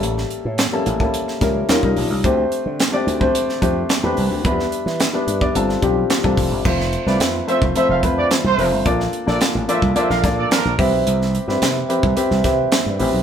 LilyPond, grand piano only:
\new Staff \with { instrumentName = "Grand piano" } { \time 4/4 \key f \lydian \tempo 4 = 109 <g bes cis' e' a'>4 r16 <g bes cis' e' a'>8 <g bes cis' e' a'>8 r16 <g bes cis' e' bes'>8 <g des' ees' f' bes'>16 <g des' ees' f' bes'>8 r16 | <a c' d' g' c''>4 r16 <a c' d' g' d''>8 <a c' d' g' c''>8 r16 <a c' d' g' c''>8 r16 <a c' d' g' b'>8 r16 | <f g b d' e' b'>4 r16 <g b d' e' b'>8 <g b d' e' d''>16 <g c' d' f' a'>8 <g c' d' f' g'>8 r16 <g c' d' f' a'>8 r16 | <a c' e' f' c''>8 r16 <a c' e' f' b'>8 r16 <a c' e' f' c''>8 <a c' e' f' c''>8 <a c' e' f' b'>8. r16 <a c' e' f' c''>8 |
<bes d' f' a' d''>8 r16 <bes d' f' a' d''>8 r16 <bes d' f' a' d''>8 <bes d' f' a' d''>8 <bes d' f' a' d''>8. r16 <c' e' g' b' e''>8~ | <c' e' g' b' e''>8 r16 <c' e' g' b' e''>8 r16 <c' e' g' b' e''>8 <c' e' g' b' e''>8 <c' e' g' b' e''>8. r16 <c' e' g' b' e''>8 | }